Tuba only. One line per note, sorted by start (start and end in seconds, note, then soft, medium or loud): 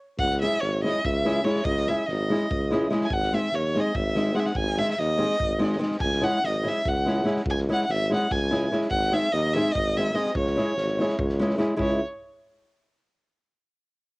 0.19 0.45 C#2 loud
0.62 0.87 G#1 loud
1.05 1.41 C#2 loud
1.66 1.91 C#2 loud
2.08 2.34 G#1 loud
2.51 2.87 C#2 loud
3.10 3.36 G#1 loud
3.53 3.79 D#2 medium
3.96 4.32 G#1 medium
4.56 4.82 G#1 loud
4.99 5.24 D#2 loud
5.42 5.78 G#1 loud
6.01 6.27 C#2 loud
6.43 6.69 G#1 loud
6.86 7.22 C#2 loud
7.46 7.71 C#2 loud
7.89 8.14 G#1 loud
8.31 8.67 C#2 loud
8.90 9.16 G#1 loud
9.33 9.58 D#2 loud
9.75 10.11 G#1 medium
10.34 10.60 C#2 loud
10.77 11.02 G#1 loud
11.19 11.55 C#2 loud
11.79 12.00 C#2 medium